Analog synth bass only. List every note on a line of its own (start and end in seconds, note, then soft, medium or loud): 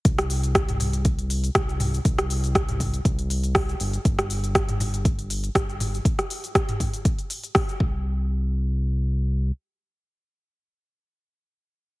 0.05 1.50 C2 loud
1.55 2.00 C2 medium
2.05 3.00 C2 loud
3.05 3.75 C2 loud
3.80 3.98 G1 medium
4.05 5.50 G1 loud
5.55 6.00 G1 medium
7.80 9.51 C2 loud